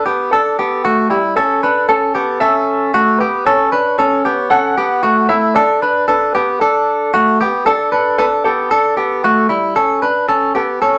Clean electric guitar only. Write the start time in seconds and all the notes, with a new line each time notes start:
0.06 B3 G4
0.33 D4 A4
0.59 B3 G4
0.85 A3 F#4
1.10 G3 E4
1.37 C#4 A4
1.63 D4 B4
1.89 C#4 A4
2.15 B3 G4
2.41 C#4 A4
2.94 A3 F#4
3.21 B3 G4
3.47 C#4 A4
3.72 D4 B4
3.99 C#4 A4
4.25 B3 G4
4.51 C#4 A4
4.78 B3 G4
5.03 A3 F#4
5.29 A3 E4
5.56 D4 A4
5.82 D4 B4
6.08 D4 A4
6.35 B3 G4
6.61 D4 A4
7.14 A3 F#4
7.41 B3 G4
7.66 D4 A4
7.92 D4 B4
8.19 D4 A4
8.45 B3 G4
8.71 D4 A4
8.97 B3 G4
9.24 A3 F#4
9.49 G3 E4
9.76 C#4 A4
10.02 D4 B4
10.29 C#4 A4
10.55 B3 G4
10.82 C#4 A4